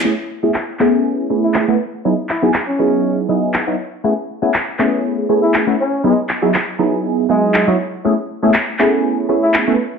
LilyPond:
<<
  \new Staff \with { instrumentName = "Horn section" } { \time 4/4 \key a \lydian \tempo 4 = 120 r2 r8. e'16 r4 | r8 e'16 r8 cis'4 r4. r16 | r2 r8. e'16 r8 cis'8 | gis16 r2 r16 gis8. r8. |
r2 r8. e'16 r4 | }
  \new Staff \with { instrumentName = "Analog polysynth" } { \time 4/4 \key a \lydian <a b cis' e' gis'>16 r8 <a b cis' e' gis'>16 r8 <a b cis' e' gis'>4 <a b cis' e' gis'>8. <a b cis' e' b'>16 r8 | <fis b dis' e' gis'>16 r8 <fis b dis' e' gis'>16 r8 <fis b dis' e' gis'>4 <fis b dis' e' gis'>8. <fis b dis' e' cis''>16 r8 | <a b cis' e' gis'>16 r8 <a b cis' e' gis'>16 r8 <a b cis' e' gis'>4 <a b cis' e' gis'>8. <a b cis' e' b'>16 r8 | <fis b dis' e' gis'>16 r8 <fis b dis' e' gis'>16 r8 <fis b dis' e' gis'>4 <fis b dis' e' gis'>8. <fis b dis' e' cis''>16 r8 |
<a b cis' e' gis'>16 r8 <a b cis' e' gis'>16 r8 <a b cis' e' gis'>4 <a b cis' e' gis'>8. <a b cis' e' b'>16 r8 | }
  \new DrumStaff \with { instrumentName = "Drums" } \drummode { \time 4/4 r4 hc8 hc8 r4 hc4 | r8 hc8 hc4 r4 hc4 | r4 hc8 hc8 r4 hc4 | r8 hc8 hc4 r4 hc4 |
r4 hc8 hc8 r4 hc4 | }
>>